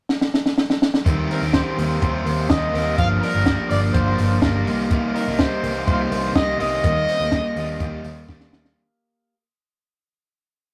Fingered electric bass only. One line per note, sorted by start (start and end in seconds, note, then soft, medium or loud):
1.06 1.26 D#2 loud
1.42 1.62 D#2 medium
1.78 1.98 D#2 medium
2.02 2.22 D#2 loud
2.26 2.46 D#2 medium
2.50 2.70 D#2 medium
2.74 2.94 D#2 loud
2.98 3.18 G1 loud
3.34 3.54 G1 medium
3.70 3.90 G1 medium
3.94 4.14 G1 loud
4.18 4.38 G1 medium
4.42 4.62 G1 loud
4.67 5.06 C2 loud
5.28 5.47 C2 medium
5.63 5.83 C2 loud
5.88 6.07 C2 loud
6.12 6.31 C2 loud
6.36 6.55 C2 loud
6.60 6.80 C2 loud
6.84 7.04 D#2 loud
7.20 7.40 D#2 medium
7.56 7.76 D#2 medium
7.80 8.00 D#2 loud
8.05 8.25 D#2 medium
8.28 8.48 D#2 medium
8.53 8.73 D#2 medium